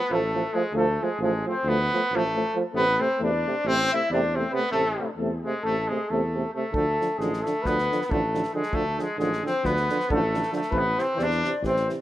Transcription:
Already playing: B3 B4
0.10 A1 F3 A3
0.15 A4
0.33 F3 A3
0.53 F3 G#3 A3 G#4
0.72 D2 F3 A3
0.77 A4
1.00 F3 G#3 A3 G#4
1.18 A1 F3 G#3 A3
1.24 G#4
1.45 F3 A3 C4 C5
1.63 D2 F3 A3
1.68 B3 B4
1.92 F3 A3
2.10 A1 F3 A3
2.16 A3 A4
2.35 F3 A3
2.55 F3 A3
2.73 A1 C3 A3 B3 B4
2.98 C3 A3 C4 C5
3.18 E2 C3 A3
3.23 D4 D5
3.45 C3 A3
3.64 A1 C3 A3 C4 C5
3.92 C3 A3 E4 E5
4.10 E2 C3 D4 D5
4.14 A3
4.34 C3 A3 C4 C5
4.51 C3 B3 B4
4.57 A3
4.71 A1 C3 A3 A4
4.98 C3 A3
5.17 E2 C3 A3
5.42 C3 G#3 A3 G#4
5.62 A1 C3 A3 A4
5.88 C3 G#3 A3 G#4
6.10 E2 C3 A3 A4
6.35 C3 A3
6.53 C3 A3 A4
6.72 D2 D3 F3 A3 A4, kick
7.00 D3 F3, snare
7.18 A1 D3 F3 G#3 G#4, snare
7.33 snare
7.41 D3 F3 A3 A4
7.46 snare
7.62 D2 D3 B4, kick, snare
7.66 F3 B3
7.78 snare
7.91 D3 F3, snare
8.02 B3 B4, snare
8.09 A1 D3 F3 A3 A4, kick
8.33 D3 F3, snare
8.43 snare
8.53 D3 F3 G#3 G#4
8.63 snare
8.72 D2 D3 F3 A3 A4, kick
8.97 D3 F3 G#3 G#4, snare
9.18 A1 D3 F3 G#3 G#4, snare
9.33 snare
9.42 D3 F3 C4, snare
9.47 C5
9.63 D2 D3 F3 B3 B4, kick, snare
9.76 snare
9.88 D3 F3, snare
10.00 snare
10.09 A1 D3 F3 A4, kick
10.13 A3
10.33 D3 F3, snare
10.42 snare
10.52 D3 F3 A4, snare
10.56 A3
10.62 snare
10.71 A1 C3 E3 B4, kick
10.78 B3
10.96 C3 E3 C5, snare
11.02 C4
11.14 E2 C3 E3
11.19 D5, snare
11.23 D4
11.30 snare
11.43 C3 E3, snare
11.62 A1 C3 E3, kick, snare
11.66 C4 C5
11.76 snare
11.86 C3 E3, snare

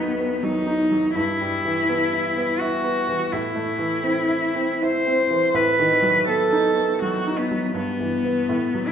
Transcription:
Already playing: A2 D#3 F#3 B3 D#4
0.19 B3
0.43 F#3 D#4
0.67 D#4
0.91 F#3
1.15 G2 E4
1.41 G3
1.65 E3
1.89 B3
2.13 E4
2.37 B3
2.60 E4 F#4
2.84 B3
3.09 E3
3.33 A2 E4
3.55 A3
3.79 E3
4.03 C4
4.28 E4
4.55 C4
4.82 E4 C5
5.07 C4
5.31 E3
5.54 A2 B4
5.79 D#3
6.02 F#3
6.28 B3 A4
6.52 D#4
6.76 B3
7.02 F#3 F#4
7.27 D#4
7.38 B3
7.51 F#3
7.74 G2 B3
8.00 E3
8.25 B3
8.49 A2
8.75 F#3
8.88 E4

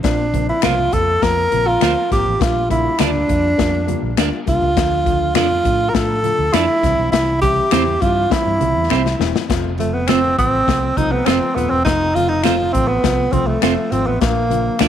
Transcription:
0.03 A#1 F3 A#3 C4 D4 F4, kick, snare, closed hi-hat, muted conga
0.33 F3 A#3 C4 D4, kick, closed hi-hat, high conga
0.49 E4
0.62 C2 F3 A#3 C4 F4 A#4 C5, finger snap, snare, closed hi-hat, muted conga, high conga
0.79 low conga
0.92 F2 F3 A#3 C4 G4 A4, kick, closed hi-hat, high conga
1.22 F2 F3 A#3 C4 F4 A#4, kick, snare, closed hi-hat, muted conga
1.38 muted conga
1.50 A#1 F3 A#3 C4 F4, closed hi-hat, high conga
1.67 F4
1.80 D2 F3 A#3 C4 F4 A#4 C5, finger snap, snare, closed hi-hat, muted conga
2.09 G#1 F3 A#3 C4 F4 G4, kick, snare, closed hi-hat, low conga
2.26 A1, low conga
2.39 A#1 G3 A#3 D4 F4, kick, snare, closed hi-hat, muted conga
2.56 muted conga
2.69 G3 A#3 D4 E4 F4, kick, closed hi-hat, high conga
2.98 D2 G3 A#3 D4 F4 A#4 D5, finger snap, snare, closed hi-hat, muted conga, high conga
3.16 muted conga, low conga
3.27 F2 G3 A#3 D4 F4, kick, closed hi-hat, high conga
3.57 F2 G3 A#3 D4 F4, kick, snare, closed hi-hat
3.75 muted conga
3.87 G3 A#3 D4 F4, closed hi-hat, high conga
4.03 A#1
4.16 D2 G3 A#3 D4 F4 A#4 D5, finger snap, snare, closed hi-hat
4.33 muted conga
4.46 C2 G3 A#3 D4 F4, kick, closed hi-hat, low conga
4.62 C#2, low conga
4.76 D2 F3 A3 D4 F4, kick, snare, closed hi-hat
4.92 muted conga
5.04 F3 A3 D4 F4, kick, closed hi-hat, high conga
5.34 F2 F3 A3 D4 F4 A4 D5, finger snap, snare, closed hi-hat, muted conga, high conga
5.51 muted conga, low conga
5.63 A2 F3 A3 D4 F4, kick, closed hi-hat, high conga
5.89 F3 A#4
5.94 A2 A3 D4 F4 A4, kick, snare, closed hi-hat, muted conga
6.10 muted conga
6.22 F3 A3 D4 F4, closed hi-hat, high conga
6.39 D2
6.52 F2 F3 A3 D4 E4 F4 A4 D5, finger snap, snare, closed hi-hat, muted conga
6.68 muted conga
6.83 C2 E3 G3 C4 E4, kick, snare, closed hi-hat, low conga
6.98 B1, low conga
7.12 C2 E4, snare, closed hi-hat, muted conga
7.28 muted conga
7.42 E3 G3 C4 G4, kick, closed hi-hat, high conga
7.71 E2 E3 G3 C4 E4 G4 C5, finger snap, snare, closed hi-hat, high conga
7.88 muted conga, low conga
8.01 G2 E3 G3 C4 E4 F4, kick, closed hi-hat, high conga
8.30 E3 G3 C4 E4, kick, snare, closed hi-hat
8.46 G2, muted conga
8.60 C2 E3 G3 C4 E4, closed hi-hat, high conga
8.76 E2
8.89 C2 E3 G3 C4 E4 G4 C5, finger snap, snare
9.06 snare, muted conga
9.19 E1 E3 G3 C4 E4, snare, low conga
9.35 snare, low conga
9.49 F1 F3 A3 C4 F4, kick, snare, closed hi-hat, muted conga
9.64 muted conga
9.79 F3 A3 C4 F4, closed hi-hat, high conga
9.94 B3
10.08 F3 A3 C4 F4 A4 C5, finger snap, snare, closed hi-hat, high conga
10.24 muted conga, low conga
10.37 A1 F3 A3 C4 F4, kick, closed hi-hat, high conga
10.66 C2 F3 A3 C4 F4, kick, snare, closed hi-hat
10.83 muted conga
10.97 C2 F3 A3 C4 D#4 F4, kick, closed hi-hat, high conga
11.12 B3
11.26 F1 F3 A3 C4 F4 A4 C5, finger snap, snare, closed hi-hat, muted conga
11.43 muted conga
11.55 D#1 F3 A3 B3 C4 F4, closed hi-hat, low conga
11.70 E1 C4, low conga
11.85 F1 F3 A3 C4 D#4 F4, kick, snare, closed hi-hat, muted conga
12.01 muted conga
12.15 F3 A3 C4 F4, closed hi-hat, high conga
12.29 D#4
12.43 F3 A3 C4 F4 A4 C5, finger snap, snare, closed hi-hat, muted conga, high conga
12.61 low conga
12.73 A1 F3 A3 C4 F4, kick, closed hi-hat, high conga
12.88 B3
13.03 C2 F3 A3 C4 F4, kick, snare, closed hi-hat, muted conga
13.32 C2 F3 A3 C4 F4, kick, closed hi-hat, high conga
13.47 A3
13.61 F1 F3 A3 C4 F4 A4 C5, finger snap, snare, closed hi-hat, muted conga
13.91 G#1 F3 A3 C4 F4, closed hi-hat, low conga
14.07 A1 B3, low conga
14.20 A#1 F3 A#3 D4 F4, kick, snare, closed hi-hat, muted conga
14.36 muted conga
14.49 F3 A#3 D4 F4, closed hi-hat, high conga
14.79 D2 F3 A#3 D4 F4 A#4 D5, finger snap, snare, closed hi-hat, high conga

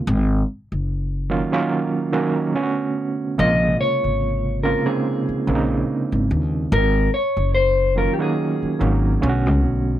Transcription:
0.07 G#1
0.72 F#1
1.30 D#3 F#3 A#3 C#4 F4
1.52 D#3 F#3 A#3 C#4 F4
2.13 D#3 F#3 A#3 C#4 F#4
2.54 D3 A3 B3 C#4 F4
2.63 F#4
3.38 A#1 C3 C#3 G#3 A#3 F4 D#5
3.81 C#5
4.04 G#1
4.63 C#3 G#3 A#3 C4 F4 A#4
4.85 C#3 G#3 A#3 C4 D#4 G#4
5.29 muted upright bass stroke
5.47 A#1 C#3 G#3 A#3 C4 D4
5.55 D#4
6.12 G#1
6.31 D#2
6.72 G#1 A#4
7.14 C#5
7.37 F#1
7.55 C5
7.96 D#3 F#3 A#3 C#4 F4 A#4
8.13 G4
8.19 D#3 F#3 A#3 C#4 F#4 G#4
8.62 muted upright bass stroke
8.79 G#1 D#3 F#3 A#3 C#4 D#4
9.21 B1 D3 A3 B3 C#4 F4
9.29 F#4
9.46 C#2
9.65 B1

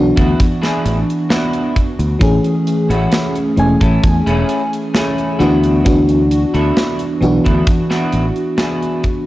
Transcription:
Already playing: B1 E3 B3 D4 F#4
0.16 D2 B3 D4 E4 F#4, kick, closed hi-hat
0.40 kick, closed hi-hat
0.62 B3 D4 E4 G#4, snare, closed hi-hat
0.86 A1, closed hi-hat
1.10 closed hi-hat
1.30 B3 D4 E4 F#4, snare, closed hi-hat
1.53 closed hi-hat
1.76 kick, closed hi-hat
1.99 D2, closed hi-hat
2.19 A1 E3 A3 C#4 G#4, muted clean electric guitar stroke, kick, closed hi-hat
2.44 muted clean electric guitar stroke, closed hi-hat
2.67 closed hi-hat
2.90 A1 A3 C#4 E4 F#4, closed hi-hat
3.12 snare, closed hi-hat
3.35 closed hi-hat
3.56 E1 E3 A3 C#4 G#5, closed hi-hat
3.81 A1 A3 C#4 E4 A4, kick, closed hi-hat
4.03 E2, kick, closed hi-hat
4.26 E1 A3 C#4 E4 G#4, closed hi-hat
4.49 closed hi-hat
4.73 closed hi-hat
4.94 A3 C#4 E4 G#4, snare, closed hi-hat
5.18 closed hi-hat
5.39 D2 E3 B3 D4 E4 F#4, closed hi-hat
5.63 closed hi-hat
5.84 E3 B3 D4 F#4, kick, closed hi-hat
6.08 muted clean electric guitar stroke, closed hi-hat
6.31 closed hi-hat
6.54 D2 B3 D4 E4 A4, closed hi-hat
6.77 snare, closed hi-hat
6.99 closed hi-hat
7.20 B1 E3 B3 D4 F#4, closed hi-hat
7.44 D2 B3 D4 E4 A4, kick, closed hi-hat
7.67 kick, closed hi-hat
7.90 B3 D4 E4 F#4, snare, closed hi-hat
8.12 A1, closed hi-hat
8.36 closed hi-hat
8.57 B3 D4 E4 G#4, snare, closed hi-hat
8.82 closed hi-hat
9.04 kick, closed hi-hat

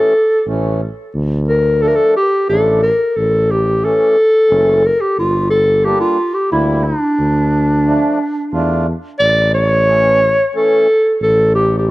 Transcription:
Already playing: E3 A3 C#4 A4
0.47 A1 E3 A3 C#4
1.15 D2
1.48 A#4
1.82 F3 A3 D4 A4
1.88 A#4
1.96 A4
2.17 G4
2.48 A1 F3 A3 D4 A4
2.83 A#4
3.16 A1 A4
3.51 G4
3.82 E3 A3 C#4 A4
4.49 F#1 E3 A3 C#4
4.86 A#4
5.01 G4
5.18 G1 F4
5.50 A4
5.84 G3 A#3 D4 G4
6.01 F4
6.35 G4
6.51 D2 G3 A#3 E4
6.84 D4
7.19 D2
7.85 F3 A3 D4
8.52 E2 A3 D4 F4
9.20 A1 D5
9.54 C#5
9.87 E3 A3 C#4
10.53 E3 A3 C#4 A4
11.21 A1 A4
11.55 G4
11.78 G4
11.87 C#3 A3

